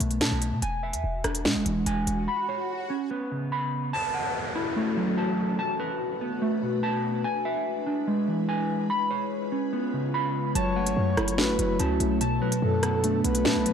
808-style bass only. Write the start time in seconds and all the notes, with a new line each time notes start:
0.00 B1
0.21 B2
0.31 B1
0.52 B2
0.62 E1
0.93 E2
1.04 E1
1.24 E1
1.45 B2
1.55 E1
1.66 E1
1.86 E1
2.07 E1
10.55 F#1
10.86 G#1
10.97 F#2
11.18 F#1
11.38 A1
11.49 F#1
11.59 F#1
11.80 C#2
12.00 B1
12.62 F#2
13.24 B1
13.45 B2
13.55 B1